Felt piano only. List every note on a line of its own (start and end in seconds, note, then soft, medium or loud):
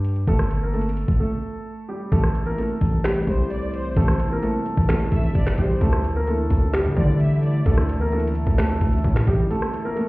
0.00 0.24 G3 medium
0.00 0.24 G4 medium
0.28 0.61 A3 medium
0.28 0.60 A4 loud
0.63 0.73 A#3 medium
0.63 0.73 A#4 medium
0.74 1.17 A3 medium
0.74 1.17 A4 medium
1.20 1.85 A3 medium
1.20 1.85 A4 medium
1.89 2.10 G3 medium
1.89 2.10 G4 medium
2.12 2.45 A3 medium
2.12 2.44 A4 loud
2.46 2.57 A#3 medium
2.46 2.57 A#4 loud
2.58 3.02 A3 medium
2.58 3.02 A4 medium
3.05 3.93 G3 medium
3.05 3.93 G4 medium
3.97 4.30 A3 medium
3.97 4.29 A4 loud
4.32 4.43 A#3 medium
4.32 4.42 A#4 medium
4.42 4.86 A3 medium
4.42 4.86 A4 medium
4.89 5.54 A3 medium
4.89 5.54 A4 medium
5.58 5.80 G3 medium
5.58 5.79 G4 medium
5.81 6.14 A3 medium
5.81 6.14 A4 loud
6.16 6.27 A#3 medium
6.16 6.27 A#4 medium
6.28 6.71 A3 medium
6.28 6.71 A4 medium
6.73 7.62 G3 medium
6.73 7.62 G4 loud
7.66 7.99 A3 medium
7.66 7.99 A4 loud
8.01 8.12 A#3 medium
8.01 8.11 A#4 loud
8.12 8.56 A3 medium
8.12 8.56 A4 medium
8.58 9.24 A3 medium
8.58 9.23 A4 medium
9.28 9.49 G3 medium
9.28 9.49 G4 medium
9.50 9.83 A3 medium
9.50 9.83 A4 medium
9.85 9.96 A#3 medium
9.85 9.96 A#4 loud
9.96 10.09 A3 medium
9.96 10.09 A4 medium